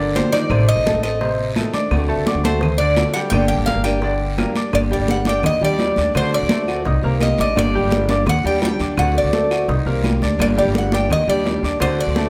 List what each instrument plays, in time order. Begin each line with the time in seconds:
Already playing: upright bass G1, grand piano D3 D4 D5, cuban tres A#4
0.14 steel-string acoustic guitar F3 A#3 D4 G4, cuban tres C5, high bongo, low bongo, high conga, short guiro
0.32 grand piano D#3 D#4 D#5, cuban tres D5, high bongo, high conga, short guiro
0.49 upright bass A1, grand piano C3 C4 C5, steel-string acoustic guitar D#3 A3 C4, high bongo, high conga, long guiro, claves
0.69 cuban tres D#5, high bongo, high conga
0.76 upright bass A1
0.84 steel-string acoustic guitar D#3 A3 C4, grand piano A3 A4 A5, high bongo, high conga, short guiro
0.94 upright bass A1
1.03 steel-string acoustic guitar A3 C4, cuban tres D#5, high bongo, high conga, short guiro, claves
1.21 grand piano C3 C4 C5, muted steel-string acoustic guitar stroke, high bongo, high conga, long guiro
1.39 high conga
1.56 steel-string acoustic guitar D#3 A3 C4, grand piano A3 A4 A5, high bongo, low bongo, high conga, short guiro, claves
1.73 grand piano D4 D5 D6, high bongo, high conga, short guiro
1.91 upright bass D2, steel-string acoustic guitar D3 A3 C4 F#4, high bongo, high conga, long guiro, claves
2.08 grand piano A3 A4 A5, high bongo, high conga
2.17 upright bass D2
2.26 steel-string acoustic guitar D3 A3 C4 F#4, grand piano D4 D5 D6, high bongo, high conga, short guiro
2.35 upright bass D2
2.43 grand piano A3 A4 A5, steel-string acoustic guitar A3 C4 F#4, cuban tres C5, high bongo, high conga, short guiro
2.61 muted steel-string acoustic guitar stroke, high bongo, high conga, low conga, long guiro, claves
2.78 grand piano D3 D4 D5, cuban tres D5, high conga
2.97 steel-string acoustic guitar D3 A3 C4 F#4, high bongo, low bongo, high conga, short guiro
3.14 grand piano G3 G4 G5, cuban tres F#5, high bongo, short guiro
3.30 upright bass G1, steel-string acoustic guitar D3 G3 A#3 D4 G4, grand piano D3 D4 D5, cuban tres G5, high bongo, high conga, long guiro, claves
3.48 cuban tres G5, high bongo, high conga
3.58 upright bass G1
3.66 steel-string acoustic guitar G3 A#3 D4 G4, grand piano A#3 A#4 A#5, cuban tres F5, high bongo, high conga, short guiro
3.75 upright bass G1
3.84 steel-string acoustic guitar G3 A#3 D4 G4, cuban tres G5, high bongo, high conga, short guiro, claves
4.01 grand piano D3 D4 D5, muted steel-string acoustic guitar stroke, high bongo, high conga, long guiro
4.21 high conga
4.37 steel-string acoustic guitar G3 A#3 D4 G4, grand piano A#3 A#4 A#5, high bongo, low bongo, high conga, short guiro, claves
4.55 grand piano D4 D5 D6, high bongo, high conga, short guiro
4.72 upright bass G1, steel-string acoustic guitar D3 G3 A#3 D4 G4, cuban tres D5, high bongo, high conga, long guiro, claves
4.91 grand piano G3 G4 G5, cuban tres D5, high bongo, high conga
5.00 upright bass G1
5.08 cuban tres F#5, high bongo, high conga, short guiro
5.25 steel-string acoustic guitar G3 A#3 D4 G4, grand piano D4 D5 D6, cuban tres G5, high bongo, high conga, short guiro
5.43 upright bass D#2, cuban tres D#5, muted steel-string acoustic guitar stroke, high bongo, high conga, low conga, long guiro, claves
5.61 upright bass D#2, steel-string acoustic guitar G3 D4 G4, grand piano G3 G4 G5, cuban tres D5, high conga, low conga
5.79 steel-string acoustic guitar D#3 G3 D4 G4, high bongo, low bongo, high conga, short guiro
5.96 upright bass D#2, grand piano D4 D5 D6, high bongo, high conga, short guiro
6.14 upright bass D2, steel-string acoustic guitar D3 A3 C4 F#4, grand piano D3 D4 D5, cuban tres C5, high bongo, high conga, long guiro, claves
6.31 cuban tres D5, high bongo, high conga
6.42 upright bass D2
6.49 grand piano A3 A4 A5, high bongo, high conga, short guiro
6.67 steel-string acoustic guitar A3 C4 F#4, high bongo, high conga, short guiro, claves
6.85 upright bass C2, grand piano D#4 D#5 D#6, muted steel-string acoustic guitar stroke, high bongo, high conga, long guiro
7.02 upright bass C2, steel-string acoustic guitar D#3 A#3 C4 G4, grand piano A#3 A#4 A#5, high conga
7.19 steel-string acoustic guitar D#3 A#3 C4 G4, cuban tres D#5, high bongo, low bongo, high conga, short guiro, claves
7.38 upright bass A1, grand piano D4 D5 D6, cuban tres D#5, high bongo, high conga, short guiro
7.55 upright bass G1, steel-string acoustic guitar D3 G3 A#3 D4 G4, cuban tres D5, high bongo, high conga, long guiro, claves
7.74 grand piano G3 G4 G5, high bongo, high conga
7.82 upright bass G1
7.90 high bongo, high conga, short guiro
8.09 steel-string acoustic guitar G3 A#3 D4 G4, grand piano D4 D5 D6, high bongo, high conga, short guiro
8.26 upright bass D#2, cuban tres F#5, muted steel-string acoustic guitar stroke, high bongo, high conga, low conga, long guiro, claves
8.44 upright bass D#2, grand piano G3 G4 G5, steel-string acoustic guitar G3 D4 G4, cuban tres G5, high conga
8.61 steel-string acoustic guitar D#3 G3 D4 G4, high bongo, low bongo, high conga, short guiro
8.65 cuban tres G5
8.79 upright bass D#2, grand piano D4 D5 D6, high bongo, short guiro
8.97 upright bass D2, steel-string acoustic guitar D3 A3 C4 F#4, grand piano D3 D4 D5, cuban tres F#5, high bongo, high conga, long guiro, claves
9.15 cuban tres D5, high bongo, high conga
9.24 upright bass D2
9.33 grand piano A3 A4 A5, high bongo, high conga, short guiro
9.51 steel-string acoustic guitar A3 C4 F#4, high bongo, high conga, short guiro, claves
9.68 upright bass C2, grand piano D#4 D#5 D#6, muted steel-string acoustic guitar stroke, high bongo, high conga, long guiro
9.86 upright bass C2, steel-string acoustic guitar D#3 A#3 C4 G4, grand piano A#3 A#4 A#5, high conga
10.04 steel-string acoustic guitar D#3 A#3 C4 G4, high bongo, low bongo, high conga, short guiro, claves
10.21 upright bass D2, grand piano D4 D5 D6, high bongo, high conga, short guiro
10.38 upright bass G1, steel-string acoustic guitar D3 G3 A#3 D4 G4, cuban tres D5, high bongo, high conga, long guiro, claves
10.57 grand piano G3 G4 G5, cuban tres D5, high bongo, high conga
10.65 upright bass G1
10.75 cuban tres F#5, high bongo, high conga, short guiro
10.92 steel-string acoustic guitar G3 A#3 D4 G4, grand piano D4 D5 D6, cuban tres G5, high bongo, high conga, short guiro
11.10 upright bass D#2, cuban tres D#5, muted steel-string acoustic guitar stroke, high bongo, high conga, low conga, long guiro, claves
11.27 upright bass D#2, grand piano G3 G4 G5, steel-string acoustic guitar G3 D4 G4, cuban tres D5, high conga
11.45 steel-string acoustic guitar D#3 G3 D4 G4, high bongo, low bongo, high conga, short guiro
11.63 upright bass D#2, grand piano D4 D5 D6, high bongo, short guiro
11.80 upright bass D2, steel-string acoustic guitar D3 A3 C4 F#4, grand piano D3 D4 D5, cuban tres C5, high bongo, high conga, long guiro, claves
11.99 cuban tres D5, high bongo, high conga
12.07 upright bass D2
12.16 grand piano A3 A4 A5, high bongo, high conga, short guiro